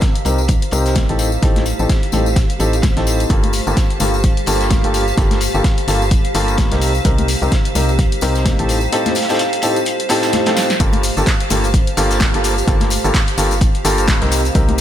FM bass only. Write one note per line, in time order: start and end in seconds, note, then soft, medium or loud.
0.25 0.56 C2 medium
0.72 1.03 C2 medium
1.09 1.38 A1 medium
1.43 1.73 A1 medium
1.79 1.87 A1 medium
2.13 2.44 A1 medium
2.60 2.90 A1 medium
2.97 3.25 A1 medium
3.30 3.61 G1 loud
3.67 3.74 G1 medium
4.00 4.31 G1 medium
4.47 4.78 G1 medium
4.84 5.13 G1 medium
5.18 5.48 G1 loud
5.54 5.62 G1 medium
5.88 6.19 G1 loud
6.35 6.65 G1 medium
6.72 7.00 C2 medium
7.05 7.36 C2 medium
7.42 7.49 C2 medium
7.75 8.06 C2 loud
8.22 8.53 C2 medium
8.59 8.88 A1 medium
10.80 11.11 G1 medium
11.17 11.24 G1 medium
11.50 11.81 G1 medium
11.97 12.28 G1 medium
12.34 12.63 G1 medium
12.68 12.98 G1 loud
13.04 13.12 G1 medium
13.38 13.69 G1 medium
13.85 14.15 G1 medium
14.22 14.50 C2 medium
14.55 14.81 C2 loud